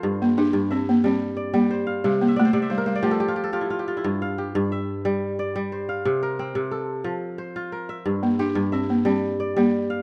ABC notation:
X:1
M:12/8
L:1/16
Q:3/8=120
K:Gdor
V:1 name="Kora"
[Ac]2 z2 G4 e6 z2 d4 c2 f2- | f2 z e d c d e c B c d G A G F G A G E F G F E- | E z f2 G4 e6 z2 d4 c2 f2- | f2 B2 C4 A6 z2 c4 B2 e2- |
e2 z2 G4 e6 z2 d6 f2 |]
V:2 name="Kora" clef=bass
G,,4 z2 G,,4 z2 G,4 z2 G,4 z2 | C,4 z2 C,4 z2 F,4 z2 F4 z2 | G,,4 z2 G,,4 z2 G,4 z2 G,4 z2 | C,4 z2 C,4 z2 F,4 z2 F4 z2 |
G,,4 z2 G,,4 z2 G,4 z2 G,4 z2 |]
V:3 name="Balafon"
z2 B,2 D4 C2 B,2 C6 B,6 | G,2 B,2 A,4 G,2 G,2 A,8- A,2 z2 | z24 | z24 |
z2 B,2 D4 C2 B,2 C6 B,6 |]